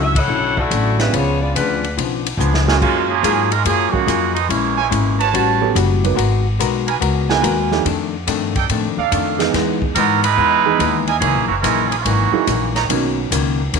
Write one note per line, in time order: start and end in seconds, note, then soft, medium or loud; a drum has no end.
0.00 0.27 C#2 medium
0.00 0.16 D3 medium
0.00 0.16 F#3 medium
0.00 0.16 C#4 medium
0.00 0.52 D4 medium
0.00 0.16 E4 medium
0.00 0.52 E4 medium
0.00 0.52 C#5 medium
0.00 0.16 E5 medium
0.00 0.52 F#5 medium
0.15 0.58 E4 medium
0.15 0.58 A4 medium
0.15 0.58 C#5 medium
0.15 0.58 F#5 medium
0.15 kick medium
0.15 ride medium
0.27 0.69 B1 medium
0.27 0.58 D3 soft
0.27 0.58 F#3 soft
0.27 0.58 C#4 medium
0.27 0.58 E4 medium
0.57 1.00 A3 medium
0.57 0.99 E4 medium
0.57 1.00 F#4 medium
0.57 1.00 D5 medium
0.57 kick medium
0.71 1.12 A1 loud
0.71 1.00 D3 medium
0.71 1.01 F#3 medium
0.71 1.01 C#4 medium
0.71 1.01 E4 medium
0.71 kick soft
0.71 hi-hat pedal medium
0.71 ride medium
0.98 1.13 G3 medium
0.98 1.52 G#3 medium
0.98 1.52 B3 medium
0.98 1.52 C#4 medium
0.98 1.13 C#4 medium
0.98 1.52 D4 medium
0.98 1.13 E4 medium
0.98 1.52 F4 medium
0.98 1.13 B4 medium
0.98 snare soft
0.98 ride soft
1.13 1.54 C#2 medium
1.13 1.42 C#3 soft
1.13 1.42 F3 soft
1.13 1.40 B3 medium
1.13 1.43 B3 soft
1.13 1.43 D4 medium
1.13 1.40 F4 medium
1.13 1.40 G#4 medium
1.13 1.42 C#5 medium
1.13 kick soft
1.13 ride medium
1.41 1.54 B3 medium
1.41 1.54 F4 medium
1.41 1.54 G#4 medium
1.41 1.54 D5 medium
1.55 1.96 D2 medium
1.55 1.85 C#3 medium
1.55 1.85 F3 medium
1.55 1.94 G#3 medium
1.55 1.85 B3 medium
1.55 1.94 D4 medium
1.55 1.85 D4 medium
1.55 1.94 F4 medium
1.55 1.94 B4 medium
1.55 kick soft
1.55 hi-hat pedal soft
1.55 ride medium
1.84 ride soft
1.97 2.37 B1 medium
1.97 2.27 C#3 soft
1.97 2.27 F3 soft
1.97 2.27 B3 soft
1.97 2.27 D4 soft
1.97 kick soft
1.97 ride medium
2.26 ride medium
2.37 2.79 C#2 loud
2.37 2.68 C#3 medium
2.37 2.68 F3 medium
2.37 2.66 F3 medium
2.37 2.65 B3 medium
2.37 2.69 B3 medium
2.37 2.65 D4 medium
2.37 2.69 D4 medium
2.37 2.65 G#4 medium
2.37 hi-hat pedal medium
2.54 snare medium
2.67 2.80 D3 medium
2.67 3.20 G#3 medium
2.67 2.80 G#3 medium
2.67 3.21 A#3 medium
2.67 2.80 B3 medium
2.67 3.20 C#4 medium
2.67 3.20 F4 medium
2.67 2.80 F#4 medium
2.67 2.77 F#4 medium
2.67 3.21 F#4 medium
2.67 2.77 A#4 medium
2.67 2.77 F5 medium
2.67 2.77 G#5 loud
2.67 snare medium
2.81 3.22 F#2 medium
2.81 3.11 F#3 soft
2.81 3.07 G#3 medium
2.81 3.07 A#3 medium
2.81 3.11 A#3 soft
2.81 3.07 C#4 medium
2.81 3.07 F4 loud
2.81 3.11 F4 medium
2.81 3.11 G#4 medium
2.81 kick medium
2.81 crash medium
3.09 3.48 F3 medium
3.09 3.49 A#3 medium
3.09 3.49 C#4 medium
3.09 3.49 G#4 loud
3.23 3.64 G#2 medium
3.23 3.52 F#3 medium
3.23 3.53 A#3 medium
3.23 3.53 F4 medium
3.23 3.42 F#4 medium
3.23 3.53 G#4 medium
3.23 3.42 A#4 medium
3.23 3.42 F5 medium
3.23 3.42 G#5 medium
3.23 kick soft
3.23 hi-hat pedal medium
3.23 ride medium
3.51 3.65 G#3 medium
3.51 3.64 C#4 medium
3.51 3.66 F4 medium
3.51 3.65 A#4 loud
3.51 ride soft
3.65 3.91 F#2 medium
3.65 3.91 F3 medium
3.65 3.94 F#3 soft
3.65 3.95 A#3 medium
3.65 3.91 A#3 medium
3.65 3.91 C#4 medium
3.65 3.95 F4 soft
3.65 3.91 G#4 medium
3.65 3.95 G#4 soft
3.65 kick soft
3.65 ride medium
3.92 4.35 C#3 medium
3.92 4.05 F3 medium
3.92 4.05 G#3 medium
3.92 4.34 G#3 medium
3.92 4.35 A#3 medium
3.92 4.06 A#3 medium
3.92 4.06 C#4 medium
3.92 4.35 F#4 loud
3.92 4.06 F#4 medium
3.92 muted upright bass stroke soft
3.92 kick medium
4.07 4.48 F2 medium
4.07 4.36 F#3 medium
4.07 4.37 A#3 medium
4.07 4.37 F4 medium
4.07 4.37 G#4 medium
4.07 kick soft
4.07 hi-hat pedal medium
4.07 ride medium
4.35 4.48 F3 medium
4.35 4.48 G#3 medium
4.35 4.48 B3 medium
4.35 4.48 D#4 medium
4.35 ride soft
4.49 4.90 A#1 medium
4.49 4.79 A#2 soft
4.49 5.33 E3 medium
4.49 5.33 G#3 medium
4.49 4.79 G#3 medium
4.49 5.33 A#3 medium
4.49 5.33 C#4 medium
4.49 4.79 C#4 medium
4.49 4.79 E4 medium
4.49 kick soft
4.49 ride medium
4.77 4.87 E4 medium
4.77 4.87 A#4 medium
4.77 4.87 C#5 medium
4.77 4.87 G#5 medium
4.90 5.32 G#1 medium
4.90 5.20 A#2 medium
4.90 5.20 G#3 medium
4.90 5.21 C#4 medium
4.90 5.21 E4 medium
4.90 kick soft
4.90 hi-hat pedal medium
4.90 ride medium
5.20 5.73 F#4 medium
5.20 5.73 B4 medium
5.20 5.73 C#5 medium
5.20 5.73 A5 loud
5.20 ride soft
5.32 5.74 A1 medium
5.32 5.62 A2 medium
5.32 5.63 G3 medium
5.32 5.63 C#4 medium
5.32 5.63 F#4 medium
5.32 kick soft
5.32 ride medium
5.61 5.74 F#3 medium
5.61 5.74 A3 medium
5.61 5.74 B3 medium
5.61 5.74 C#4 medium
5.61 5.74 G4 medium
5.75 6.16 F#1 loud
5.75 6.04 A2 medium
5.75 6.05 G3 medium
5.75 6.05 C#4 medium
5.75 6.05 F#4 medium
5.75 kick soft
5.75 hi-hat pedal soft
5.75 ride medium
6.04 6.16 F#3 medium
6.04 6.16 A#3 medium
6.04 6.16 B3 medium
6.04 6.17 D#4 soft
6.04 6.17 B4 medium
6.04 ride soft
6.15 6.58 G#1 medium
6.15 6.46 G#3 medium
6.15 6.46 B3 medium
6.15 6.47 F#4 medium
6.15 6.46 A#4 medium
6.15 kick soft
6.15 ride medium
6.59 7.00 B1 medium
6.59 6.89 G#3 medium
6.59 6.89 B3 medium
6.59 6.89 F#4 medium
6.59 6.89 A#4 medium
6.59 kick soft
6.59 hi-hat pedal medium
6.59 ride medium
6.87 6.96 F#4 medium
6.87 6.97 A#4 medium
6.87 6.97 B4 medium
6.87 6.96 G#5 medium
6.87 ride soft
7.00 7.42 C#2 medium
7.00 7.30 G#3 medium
7.00 7.30 B3 medium
7.00 7.30 F#4 medium
7.00 7.31 A#4 medium
7.00 kick soft
7.00 ride medium
7.29 7.42 F#3 medium
7.29 7.42 A#3 medium
7.29 7.42 B3 medium
7.29 7.42 D#4 medium
7.29 7.82 F#4 loud
7.29 7.42 G#4 medium
7.29 7.82 A#4 medium
7.29 7.82 B4 medium
7.29 7.82 G#5 loud
7.29 snare medium
7.42 7.84 D#2 loud
7.42 7.72 G#3 medium
7.42 7.72 B3 medium
7.42 7.73 F#4 medium
7.42 7.73 A#4 medium
7.42 kick soft
7.42 hi-hat pedal soft
7.42 ride medium
7.71 7.84 F3 medium
7.71 7.84 A3 medium
7.71 7.84 D4 medium
7.71 7.84 D#4 medium
7.71 7.84 G4 medium
7.71 snare soft
7.85 8.26 F2 medium
7.85 8.15 F2 medium
7.85 8.15 D#3 medium
7.85 8.15 A3 medium
7.85 8.16 D4 medium
7.85 kick soft
7.85 ride medium
8.27 8.57 F2 medium
8.27 8.68 G2 medium
8.27 8.57 D#3 medium
8.27 8.57 A3 medium
8.27 8.57 D4 medium
8.27 kick soft
8.27 hi-hat pedal soft
8.27 ride medium
8.56 8.65 D#4 medium
8.56 8.65 A4 medium
8.56 8.65 D5 medium
8.56 8.65 G5 medium
8.56 kick medium
8.56 ride soft
8.69 8.99 F2 medium
8.69 8.84 A2 medium
8.69 9.00 D#3 medium
8.69 9.00 A3 medium
8.69 9.00 D4 medium
8.69 kick soft
8.69 ride medium
8.83 8.97 F2 medium
8.97 9.10 D#2 medium
8.97 9.51 D#4 medium
8.97 9.51 A4 medium
8.97 9.51 D5 medium
8.97 9.51 F5 loud
9.12 9.52 F2 medium
9.12 9.41 F2 medium
9.12 9.41 D#3 medium
9.12 9.41 A3 medium
9.12 9.41 D4 medium
9.12 kick soft
9.12 hi-hat pedal medium
9.12 ride medium
9.38 9.92 E3 medium
9.38 9.92 G#3 medium
9.38 9.92 B3 medium
9.38 9.93 D#4 medium
9.38 9.92 G#4 medium
9.38 snare soft
9.38 ride soft
9.53 9.94 E2 medium
9.53 9.83 E3 medium
9.53 9.83 G#3 soft
9.53 9.84 B3 medium
9.53 9.84 D#4 medium
9.53 kick soft
9.53 snare soft
9.53 ride medium
9.82 kick medium
9.95 10.36 G#2 medium
9.95 10.25 E3 medium
9.95 10.21 F#3 medium
9.95 10.26 G#3 medium
9.95 10.21 B3 medium
9.95 10.26 B3 medium
9.95 10.21 D#4 medium
9.95 10.26 D#4 medium
9.95 10.21 A#4 loud
9.95 kick soft
9.95 hi-hat pedal medium
9.95 ride medium
10.24 11.04 G#3 loud
10.24 11.04 D#4 loud
10.24 11.04 E4 loud
10.24 11.04 B4 loud
10.24 ride medium
10.37 10.78 E2 medium
10.37 10.67 E3 medium
10.37 10.67 G#3 medium
10.37 10.67 B3 medium
10.37 10.68 D#4 medium
10.37 kick soft
10.65 10.78 E3 medium
10.65 10.78 G#3 medium
10.65 10.78 B3 medium
10.65 10.78 D#4 medium
10.65 10.78 G#4 medium
10.79 11.20 D#2 loud
10.79 11.09 E3 medium
10.79 11.09 G#3 medium
10.79 11.10 B3 medium
10.79 11.10 D#4 medium
10.79 kick soft
10.79 hi-hat pedal medium
10.79 ride medium
11.07 11.17 E4 medium
11.07 11.17 A#4 medium
11.07 11.17 D#5 medium
11.07 11.17 G#5 medium
11.07 ride soft
11.20 11.35 C#2 medium
11.20 11.50 F#2 medium
11.20 11.47 E3 medium
11.20 11.51 E3 medium
11.20 11.46 A#3 medium
11.20 11.51 A#3 medium
11.20 11.47 C#4 medium
11.20 11.51 D#4 medium
11.20 11.47 G#4 medium
11.20 kick soft
11.20 ride medium
11.35 11.48 A#1 medium
11.48 11.62 F#1 medium
11.48 11.55 E3 medium
11.48 11.55 A#3 medium
11.48 11.54 C#4 medium
11.48 11.55 F#4 medium
11.61 12.04 A#1 medium
11.61 11.93 F#2 medium
11.61 11.93 E3 medium
11.61 11.88 G#3 medium
11.61 11.93 A#3 medium
11.61 11.88 C#4 medium
11.61 11.93 D#4 medium
11.61 11.88 E4 medium
11.61 11.88 A#4 medium
11.61 kick soft
11.61 hi-hat pedal soft
11.61 ride medium
11.89 12.00 E3 medium
11.89 12.00 A#3 medium
11.89 12.00 C#4 medium
11.89 12.00 G#4 medium
11.89 ride soft
11.99 12.74 C#4 medium
11.99 12.04 F4 medium
12.03 12.31 G#1 medium
12.03 12.35 F#2 soft
12.03 12.74 E3 medium
12.03 12.74 A#3 medium
12.03 12.74 F#4 medium
12.03 kick soft
12.03 ride medium
12.07 12.36 E3 soft
12.07 12.36 A#3 medium
12.07 12.36 D#4 medium
12.32 12.46 F#3 medium
12.32 12.46 A#3 medium
12.32 12.46 D#4 medium
12.32 12.46 E4 medium
12.32 12.46 G#4 medium
12.32 muted upright bass stroke soft
12.47 12.88 A#1 loud
12.47 12.77 F#2 medium
12.47 12.77 E3 medium
12.47 12.77 A#3 medium
12.47 12.77 D#4 medium
12.47 kick soft
12.47 hi-hat pedal soft
12.47 ride medium
12.75 12.85 D#4 medium
12.75 12.85 B4 medium
12.75 12.85 C#5 medium
12.75 12.85 A#5 medium
12.75 snare soft
12.75 ride soft
12.89 13.30 B1 medium
12.89 13.19 B2 medium
12.89 13.19 D#3 medium
12.89 13.80 F#3 medium
12.89 13.20 A#3 medium
12.89 13.80 B3 medium
12.89 13.80 C#4 medium
12.89 13.20 C#4 medium
12.89 13.80 D#4 soft
12.89 13.80 A#4 medium
12.89 kick soft
12.89 ride medium
13.31 13.72 C#2 medium
13.31 13.61 B2 medium
13.31 13.61 D#3 medium
13.31 13.61 A#3 medium
13.31 13.62 C#4 medium
13.31 kick soft
13.31 hi-hat pedal medium
13.31 ride medium
13.73 13.80 D#2 medium
13.73 13.80 B2 medium
13.73 13.80 D#3 medium
13.73 13.80 A#3 medium
13.73 13.80 C#4 medium
13.73 kick soft
13.73 ride medium